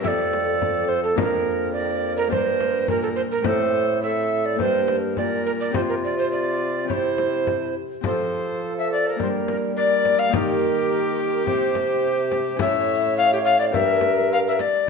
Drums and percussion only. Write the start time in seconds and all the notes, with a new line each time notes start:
0.05 frame drum
0.33 frame drum
0.62 frame drum
1.18 frame drum
2.32 frame drum
2.61 frame drum
2.88 frame drum
3.44 frame drum
4.60 frame drum
4.88 frame drum
5.17 frame drum
5.74 frame drum
6.90 frame drum
7.18 frame drum
7.47 frame drum
8.04 frame drum
9.20 frame drum
9.48 frame drum
10.05 frame drum
10.33 frame drum
11.47 frame drum
11.75 frame drum
12.32 frame drum
12.59 frame drum
13.74 frame drum
14.01 frame drum
14.59 frame drum